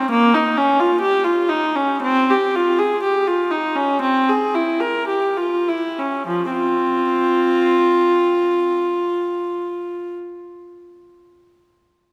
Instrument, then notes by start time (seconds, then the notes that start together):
viola
Already playing: C4
0.11 A#3
0.34 D#4
0.57 C#4
0.80 F4
1.01 G4
1.24 F4
1.49 D#4
1.75 C#4
2.02 C4
2.31 G4
2.55 F4
2.79 G#4
3.03 G4
3.27 F4
3.51 D#4
3.76 C#4
4.02 C4
4.29 G#4
4.55 E4
4.80 A#4
5.08 G4
5.37 F4
5.68 E4
5.99 C#4
6.27 F3
6.50 C4 F4